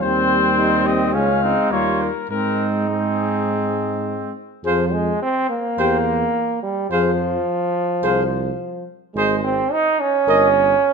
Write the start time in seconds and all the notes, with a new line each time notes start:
0.00 D#2 G3 C4 C5
0.58 D#4
0.85 C4 D#5
1.13 C#2 G#3 C#4 F5
1.43 C4 D#4
1.71 D#2 G3 A#3 F4 C#5
2.02 A#4
2.29 G#2 G#3 C4 D#4 A#4
2.89 G#3 C4 G#4
4.64 F2 F3 G#4 C5 F5
4.92 G#3
5.22 C4
5.50 A#3
5.78 E2 G4 C5 G5
6.63 G3
6.90 F2 F3 G#4 C5 F5
8.03 C2 G#4 C5 F5
9.15 G#1 G#3 G#4 C5 D#5
9.44 C4
9.72 D#4
10.00 C#4
10.27 G1 A#4 D#5